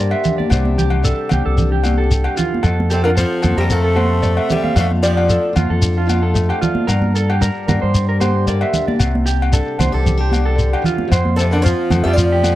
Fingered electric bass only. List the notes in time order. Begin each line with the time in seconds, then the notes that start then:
Already playing: G2
0.51 C2
1.32 C2
1.46 C2
2.64 F2
3.44 F2
3.57 F2
4.76 F2
5.56 F2
5.70 F2
6.89 G2
7.68 G2
7.83 G2
9.00 C2
9.79 C2
9.94 C2
11.11 F2
11.90 F2
12.05 F2